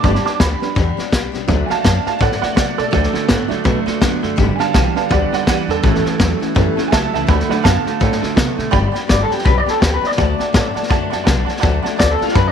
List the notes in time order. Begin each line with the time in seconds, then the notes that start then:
0.03 G1 G2 D3 G3 B3 D4 G4 A5 D6, kick, snare
0.15 snare
0.25 G3 B3 D4 G4 A5 D6, snare
0.40 D2 G3 B3 D4 G4 B5, kick, snare, hi-hat pedal
0.60 G3 B3 D4 G4, snare
0.75 E2 G2 D3 G3 B3 D4 G4, kick, snare
0.97 G3 B3 D4 G4, muted upright bass stroke, snare
1.11 B1 G3 B3 D4 G4, kick, snare, hi-hat pedal
1.32 B1 G3 B3 D4 G4, snare
1.48 D2 D3 F#3 A3 D4 F#4, kick, snare
1.66 F#4 G#5, snare
1.70 A3 D4 F5 A5, muted upright bass stroke
1.83 F#2 F#3 A3 D4 F#4 F5 A5, kick, snare, hi-hat pedal
2.03 A3 D4 F#4 F5 A5, muted upright bass stroke, snare
2.19 A2 D3 F#3 A3 D4 F#4 D5 F#5, kick, snare
2.32 snare
2.40 A3 D4 F#4 D5 F#5, muted upright bass stroke, snare
2.54 C3 F#3 A3 D4 F#4 D5 F#5, kick, snare, hi-hat pedal
2.77 B2 A3 D4 F#4 A4 D5, snare
2.91 D2 D3 F#3 A3 D4 F#4, kick, snare
3.03 snare
3.13 D3 A3 D4 F#4, muted upright bass stroke, snare
3.28 A2 D3 F#3 A3 B3 D4 F#4, kick, snare, hi-hat pedal
3.48 D3 F#3 A3 D4 F#4, muted upright bass stroke, snare
3.64 B2 D3 F#3 A3 D4 F#4, kick, snare
3.86 D3 A3 D4 F#4, muted upright bass stroke, snare
4.01 F#2 D3 F#3 A3 B3 D4 F#4, kick, snare, hi-hat pedal
4.21 F#2 D3 A3 D4 F#4, snare
4.36 G1 G2 D3 G3 B3 D4 G4, kick, snare
4.56 G2 D3 G4 G#5, muted upright bass stroke, snare
4.60 G3 B3 D4 F5 A5
4.73 B1 G2 E3 G3 B3 D4 G4 F5 A5, kick, snare, hi-hat pedal
4.94 G2 D3 G3 B3 D4 G4 F5 A5, muted upright bass stroke, snare
5.09 D2 G2 D3 G3 B3 D4 G4 D5 F#5, kick, snare
5.30 G2 D3 G3 B3 D4 G4 D5, muted upright bass stroke, snare
5.35 F#5
5.46 E2 G2 E3 G3 B3 G4 D5 F#5, kick, snare, hi-hat pedal
5.67 E2 G2 D3 G3 B3 D4 G4 A4, snare
5.83 A1 A2 E3 G3 A3 B3 C#4 A4, kick, snare
5.95 snare
6.04 A2 E3 G3 A3 C#4 A4, muted upright bass stroke, snare
6.18 E2 A2 F#3 G3 A3 C#4 A4, kick, snare, hi-hat pedal
6.40 A2 E3 G3 A3 C#4 A4, muted upright bass stroke, snare
6.55 F#2 A2 E3 G3 A3 B3 C#4 A4, kick, snare
6.76 A2 E3 G3 A3 C#4 A4, muted upright bass stroke, snare
6.88 G3 A3 G#5
6.92 C#2 A2 F#3 C#4 A4 E5 A5, kick, snare, hi-hat pedal
7.12 C#2 A2 E3 G3 A3 C#4 A4 E5 A5, snare
7.27 D2 D3 F#3 A3 F#4 A4 F#5 B5, kick, snare
7.40 snare
7.48 D3 F#3 A3 D4 F#4 A4 F#5 B5, muted upright bass stroke, snare
7.63 F#2 D3 F#3 B3 F#4 A4 F5 A5, kick, snare, hi-hat pedal
7.85 D3 A3 F#4 A4, muted upright bass stroke, snare
8.00 A2 D3 F#3 A3 F#4 A4, kick, snare
8.12 snare
8.20 D3 A3 F#4 A4, muted upright bass stroke, snare
8.35 C3 D3 F#3 A3 B3 D4 F#4 A4, kick, snare, hi-hat pedal
8.57 B2 D3 A3 F#4 A4, snare
8.71 G1 G2 D3 G3 B3 D4 G4 D5 G5 B5, kick, snare
8.92 G3 B3 D4 G4 D5 G5 B5, muted upright bass stroke, snare
9.07 G1 G3 B3 D4 G4 D5 G5 B5, kick, snare, hi-hat pedal
9.23 A4
9.28 G3 B3 D4 G4 D5 G5 B5, muted upright bass stroke, snare
9.33 G4
9.38 snare
9.43 B1 G2 D3 G3 B3 D4 G4 B4 D5 G5 B5, kick, snare
9.58 D5
9.66 G3 B3 D4 G4 A4 D5 G5 B5, muted upright bass stroke, snare
9.80 D2 G3 B3 D4 G4 D5 G5 B5, kick, snare, hi-hat pedal
9.94 B4
10.01 G3 B3 D4 G4 D5 G5 B5, snare
10.07 D5
10.11 snare
10.16 D2 D3 F#3 A3 D4 F#4 D5 F#5 A5, kick, snare
10.38 A3 D4 F#4 D5 F#5 A5, muted upright bass stroke, snare
10.53 A2 F#3 A3 D4 F#4 D5 F#5 A5, kick, snare, hi-hat pedal
10.74 A3 D4 F#4 D5 F#5 A5, muted upright bass stroke, snare
10.83 snare
10.89 F#2 D3 F#3 A3 D4 F#4 D5 F#5 A5, kick, snare
11.10 F#2 A3 D4 F#4 D5 F#5 A5, snare
11.24 B1 F#3 A3 D4 D5 F#5 A5, kick, snare, hi-hat pedal
11.29 F#4
11.45 D4 F#4 D5 F#5 A5, snare
11.49 A3, muted upright bass stroke
11.56 D5, snare
11.61 D2 D3 F#3 A3 D4 F#4 F#5 A5, kick, snare
11.82 A3 D4 F#4 D5 F#5 A5, muted upright bass stroke, snare
11.96 D2 F#3 A3 D4 F#4 D5 F#5 A5, kick, snare, hi-hat pedal
12.11 A4
12.19 A3 D4 F#4 D5 F#5 A5, muted upright bass stroke, snare
12.23 F4
12.28 D5, snare
12.33 F#2 D3 F#3 A3 D4 F#4 B4 F#5 A5, kick, snare
12.48 D5